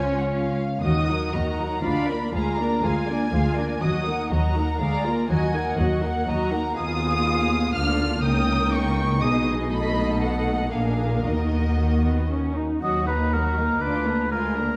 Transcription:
Already playing: double bass section C#2, cello section C#4, viola section F4, violin section C#5 G#5
0.18 violin section F#5
0.33 violin section F5
0.83 double bass section D#2, cello section D#2, viola section D#3 F#4, violin section F#4 D#5 D#6
1.08 viola section F#3 D#4, violin section A#4 F#5
1.33 double bass section D#2, cello section D#2, viola section D#3 F#4, violin section F#4 D#5 A#5
1.59 viola section F#3 D#4, violin section A#4 F#5
1.84 double bass section D2, cello section D2, viola section D4 F4, violin section D5 F5 B5
2.08 viola section A#3 D4, violin section A#4 D5
2.33 cello section D2, double bass section D2, viola section G#3 F4, violin section G#4 F5 A#5
2.58 viola section A#3 D4, violin section A#4 D5
2.83 double bass section D2, cello section D2, viola section G#3 F4, violin section G#4 F5 G#5
3.08 viola section A#3 D4, violin section A#4 D5
3.33 double bass section D2, cello section D2, viola section G#3 F4, violin section G#4 F5
3.56 viola section A#3 D4, violin section A#4 D5
3.82 cello section D#2, double bass section D#2, viola section F#3 F#4, violin section F#4 D#5 D#6
4.06 viola section A#3 D#4, violin section A#4 F#5
4.30 cello section D#2, double bass section D#2, viola section F#3 F#4, violin section F#4 D#5 A#5
4.57 viola section A#3 D#4, violin section A#4 F#5
4.79 double bass section D2, cello section D2, viola section G#3 G#4, violin section D5 F5 A#5
5.05 viola section A#3 F4, violin section A#4 D5
5.29 cello section D#2, double bass section D#2, viola section F#3 F#4, violin section F#4 D#5 G#5
5.54 viola section A#3 D#4, violin section A#4 F#5
5.78 cello section D#2, double bass section D#2, viola section F#3 F#4, violin section F#4 D#5 F#5
6.02 viola section A#3 D#4, violin section A#4 F#5
6.26 double bass section D#2, cello section D#2, viola section F#3 F#4, violin section F#4 D#5 A#5
6.51 viola section A#3 D#4, violin section A#4 F#5
6.77 double bass section D#2, cello section D#2, viola section B3 F4, violin section G#4 F5 D#6
7.75 double bass section D2, cello section D3, viola section A#3 D4, violin section F4 F6
8.24 double bass section C#2, cello section C#3, viola section D#4, violin section A#4 G5 D#6
8.74 violin section C#6
9.21 double bass section B1, cello section B2, viola section B3, violin section G#4 D#5 D#6
9.70 viola section A3, violin section A4 B5
10.23 violin section F#5
10.71 double bass section A#1, cello section A#2, viola section A#3 D4, violin section G#4 A#4 F5
11.25 double bass section D#2, cello section D#3, viola section D#4, violin section F#4 D#5
11.80 viola section A#3
12.06 viola section B3
12.31 viola section C#4
12.57 viola section D#4
12.81 cello section D#2, double bass section D#2, viola section F#3, violin section F#4 F#5, oboe D#5
13.06 viola section A#3, violin section D#4 A#5, oboe B4
13.32 viola section F#3, violin section F#4 F#5, oboe A#4
13.56 viola section A#3, violin section D#4 A#5
13.81 double bass section D2, cello section D2, viola section D4, violin section F4 D6, oboe B4
14.06 viola section A#3, violin section D4 A#5
14.31 viola section G#3, violin section F4 G#5, oboe A#4
14.56 viola section A#3, violin section D4 A#5

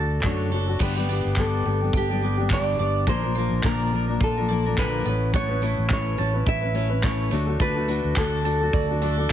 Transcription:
Already playing: fingered electric bass D2, mandolin A3 F#4 A4 A5, steel-string acoustic guitar D4 F#4 A4, nylon-string guitar F#4
0.23 fingered electric bass F#2, steel-string acoustic guitar D3 A3 D4 F#4 A4, mandolin F#4, nylon-string guitar C#5, kick, clap
0.51 fingered electric bass F#1, steel-string acoustic guitar A3 D4 F#4 A4, mandolin A4
0.68 steel-string acoustic guitar D4 F#4 A4
0.79 fingered electric bass G1, steel-string acoustic guitar G2 D3 G3 B3 D4 G4, mandolin B3 G5, nylon-string guitar B4, kick, crash
0.96 steel-string acoustic guitar G3 B3 D4 G4
1.09 steel-string acoustic guitar G3 B3 D4 G4, mandolin D4
1.25 fingered electric bass G1
1.36 steel-string acoustic guitar G2 D3 G3 B3 D4 G4, nylon-string guitar A4, mandolin D5, kick, clap
1.65 fingered electric bass G1, steel-string acoustic guitar G3 B3 D4 G4, mandolin G5
1.81 steel-string acoustic guitar G3 B3 D4 G4
1.93 fingered electric bass G1, mandolin D4, nylon-string guitar G4, kick
2.10 steel-string acoustic guitar G3 B3 D4 G4
2.21 steel-string acoustic guitar G3 B3 D4 G4, mandolin D5
2.38 steel-string acoustic guitar G3 B3 D4 G4
2.50 steel-string acoustic guitar G2 D3 G3 B3 D4 G4, mandolin D4, nylon-string guitar D5, kick, clap
2.78 fingered electric bass G1, steel-string acoustic guitar G3 B3 D4 G4, mandolin D5
3.07 fingered electric bass A#1, steel-string acoustic guitar A#2 D3 F3 A#3 D4 A#4, mandolin A#3 A#5, nylon-string guitar C5, kick
3.23 steel-string acoustic guitar F3 A#3 D4 A#4
3.35 steel-string acoustic guitar F3 A#3 D4 A#4, mandolin F4
3.51 fingered electric bass A#1
3.63 fingered electric bass A#1, steel-string acoustic guitar A#2 D3 F3 A#3 D4 A#4, nylon-string guitar A#4, mandolin D5, kick, clap
3.92 steel-string acoustic guitar F3 A#3 D4 A#4
4.07 steel-string acoustic guitar F3 A#3 D4 A#4
4.20 fingered electric bass A#1, mandolin F4, nylon-string guitar A4, kick
4.37 steel-string acoustic guitar F3 A#3 D4 A#4
4.49 steel-string acoustic guitar F3 A#3 D4 A#4, mandolin D5
4.66 steel-string acoustic guitar F3 A#3 D4 A#4
4.77 fingered electric bass A#1, steel-string acoustic guitar A#2 D3 F3 A#3 D4 A#4, mandolin F4, nylon-string guitar B4, kick, clap
5.05 fingered electric bass A1, steel-string acoustic guitar A3 C#4 E4 B4, mandolin B3
5.34 steel-string acoustic guitar A3 C#4 E4 B4, mandolin B3 A5, nylon-string guitar C#5, kick
5.49 steel-string acoustic guitar C#4 E4 B4
5.61 steel-string acoustic guitar A3 C#4 E4 B4, mandolin E4, tambourine
5.78 fingered electric bass A1
5.89 steel-string acoustic guitar A3 C#4 E4 B4, mandolin C#5, nylon-string guitar C#5, kick, clap
6.18 fingered electric bass A1, steel-string acoustic guitar A3 C#4 E4 B4, mandolin A5, tambourine
6.33 steel-string acoustic guitar C#4 E4 B4
6.46 fingered electric bass A1, mandolin E4, nylon-string guitar E5, kick
6.61 steel-string acoustic guitar C#4 E4 B4
6.74 steel-string acoustic guitar A3 C#4 E4 B4, mandolin C#5, tambourine
6.90 steel-string acoustic guitar C#4 E4 B4
7.03 steel-string acoustic guitar A3 C#4 E4 B4, mandolin E4, nylon-string guitar C#5, kick, clap
7.31 fingered electric bass D2, steel-string acoustic guitar A3 D4 F#4 A4, mandolin A3, tambourine
7.47 steel-string acoustic guitar D4 F#4 A4
7.60 fingered electric bass D2, steel-string acoustic guitar D3 A3 D4 F#4 A4, mandolin A3 A5, nylon-string guitar B4, kick
7.75 steel-string acoustic guitar D4 F#4 A4
7.87 steel-string acoustic guitar A3 D4 F#4 A4, mandolin F#4, tambourine
8.04 fingered electric bass D2
8.16 fingered electric bass D2, steel-string acoustic guitar D3 A3 D4 F#4 A4, mandolin A4, nylon-string guitar A4, kick, clap
8.43 steel-string acoustic guitar A3 D4 F#4 A4, mandolin A5, tambourine
8.61 steel-string acoustic guitar D4 F#4 A4
8.73 fingered electric bass D2, mandolin F#4, nylon-string guitar D5, kick
8.89 steel-string acoustic guitar D4 F#4 A4
9.01 steel-string acoustic guitar A3 D4 F#4 A4, mandolin A4, tambourine
9.17 steel-string acoustic guitar D4 F#4 A4

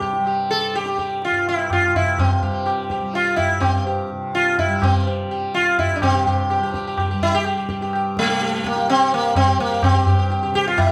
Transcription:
Already playing: tanpura G2 C3 G3
0.01 sitar G4, tabla ke
0.13 tabla te
0.18 tanpura G3
0.26 sitar G4, tabla na
0.50 sitar A4, tabla te
0.74 tanpura G3, sitar G4, tabla te
0.86 tabla te
0.98 sitar G4, tabla ke
1.10 tabla te
1.22 sitar F4, tabla te
1.31 tanpura G2
1.46 sitar E4, tabla te
1.70 sitar F4, tabla na, tabla ge
1.87 tanpura C3
1.94 sitar E4, tabla ge
2.19 sitar C4, tabla na, tabla ge
2.43 tanpura G3, sitar G4, tabla ge
2.66 sitar G4, tabla na
2.90 sitar G4, tabla ke
3.01 tanpura G3
3.14 sitar F4, tabla te
3.36 sitar E4, tabla tin, tabla ge
3.56 tanpura G2
3.60 sitar C4, tabla na, tabla ge
3.87 sitar G4
4.11 tanpura C3
4.34 sitar F4, tabla te
4.58 sitar E4, tabla tin, tabla ge
4.68 tanpura G3
4.82 sitar C4, tabla na, tabla ge
5.07 sitar G4
5.24 tanpura G3
5.31 sitar G4
5.54 sitar F4, tabla te
5.78 tanpura G2, sitar E4, tabla tin, tabla ge
5.96 sitar D4
6.02 tanpura C3, sitar C4 G4, tabla na, tabla ge
6.15 sitar G4
6.26 sitar G4, tabla ge
6.50 sitar G4, tabla na
6.58 tanpura G3
6.63 sitar G4
6.74 sitar G4, tabla ke
6.87 sitar G4
6.98 sitar G4, tabla na, tabla ge
7.11 tanpura G3, sitar G4
7.21 sitar E4, tabla ge
7.35 sitar G4
7.45 sitar G4, tabla na
7.57 sitar G4
7.69 tanpura G2, sitar G4, tabla ke
7.81 sitar G4, tabla te
7.93 sitar G4, tabla na
8.17 sitar A3, tabla ke
8.25 tanpura C3, tabla te
8.29 sitar G4
8.40 sitar G4, tabla te
8.52 sitar G4, tabla te
8.64 sitar A#3, tabla ke
8.76 tanpura G3, sitar G4, tabla te
8.88 sitar C4, tabla te
9.00 sitar G4
9.12 sitar A#3, tabla te
9.35 tanpura G3, sitar C4, tabla na, tabla ge
9.48 sitar G4
9.58 sitar A#3, tabla ge
9.70 sitar G4
9.83 sitar C4, tabla na, tabla ge
9.91 tanpura G2, sitar G4
10.06 sitar G4, tabla ge
10.19 sitar G4
10.30 sitar G4, tabla te
10.42 tanpura C3, sitar G4, tabla te
10.54 sitar G4, tabla ke
10.66 sitar F4, tabla te
10.78 sitar E4, tabla na, tabla ge

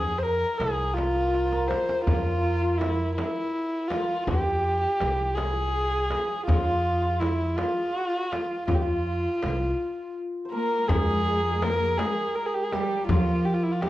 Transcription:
Already playing: upright bass F2, santur E4 G#4, kamancheh G#4
0.18 kamancheh C5
0.22 kamancheh A#4, santur A#4, tombak ka
0.43 tombak ka
0.58 upright bass C2, kamancheh G#4, tombak tek, frame drum
0.94 kamancheh F4, santur F4, frame drum
0.98 tombak tek
1.06 santur F4
1.15 santur F4
1.21 santur F4
1.27 santur F4
1.34 santur F4, tombak tek
1.44 santur C5
1.52 santur A#4, tombak ka
1.68 kamancheh C5, tombak tek, frame drum
1.89 tombak ka
2.04 upright bass F2, kamancheh F4, santur F4, tombak dum, frame drum
2.16 santur F4
2.22 santur F4
2.31 santur F4
2.38 santur F4
2.44 santur F4, tombak ka
2.62 santur F4, tombak ka
2.78 kamancheh E4, santur E4, tombak tek, frame drum
3.15 kamancheh E4, santur E4, tombak tek, frame drum
3.88 kamancheh F4, santur F4, tombak tek, frame drum
4.24 upright bass F2, kamancheh G4, santur G4, frame drum, tombak dum
4.41 santur G4
4.49 santur G4
4.59 santur G4
4.64 santur G4, tombak ka
4.74 santur G4
4.80 santur G4, tombak ka
4.88 santur G4
5.00 upright bass C2, santur G4, tombak tek, frame drum
5.35 kamancheh G#4, santur G#4, tombak tek, frame drum
5.45 santur G#4
5.53 santur G#4
5.60 santur G#4
5.68 santur G#4
5.76 santur G#4
5.82 santur G#4
5.90 santur G#4
5.98 santur G#4
6.05 santur G#4
6.11 santur G#4, tombak tek, frame drum
6.20 santur G#4
6.28 santur G#4
6.46 upright bass F2, kamancheh F4, santur F4, tombak dum, frame drum
6.85 tombak ka
7.02 santur F4, tombak ka
7.19 kamancheh E4, santur E4, tombak tek, frame drum
7.56 kamancheh F4, santur F4, tombak tek, frame drum
8.32 tombak tek, frame drum
8.67 upright bass F2, kamancheh F4, santur F4, frame drum, tombak dum
8.75 kamancheh G4
8.82 santur F4, kamancheh F4
9.07 tombak ka
9.26 tombak ka
9.43 upright bass C2, tombak tek, frame drum
10.45 santur C5
10.51 cello section A#3, kamancheh A#4, santur A#4
10.88 upright bass F2, cello section G#3, kamancheh G#4, santur G#4, frame drum, tombak dum
10.97 santur G#4
11.03 santur G#4
11.11 santur G#4
11.19 santur G#4
11.26 santur G#4
11.35 santur G#4
11.43 santur G#4
11.51 santur G#4
11.59 santur G#4, kamancheh A#4, tombak tek, frame drum
11.64 cello section A#3
11.68 santur G#4
11.74 santur G#4
11.82 santur G#4
11.94 kamancheh G#4, santur A#4
11.99 cello section G#3, santur G#4, tombak tek, frame drum
12.35 kamancheh A#4
12.46 kamancheh G#4
12.54 kamancheh G4
12.63 kamancheh G#4
12.72 cello section G3, kamancheh G4, santur G4, tombak tek, frame drum
13.08 upright bass F3, cello section F3, kamancheh F4, santur F4, frame drum, tombak dum
13.45 kamancheh G4
13.54 kamancheh F4
13.63 kamancheh E4
13.71 kamancheh F4
13.81 cello section G3, kamancheh G4, santur G4, tombak tek, frame drum

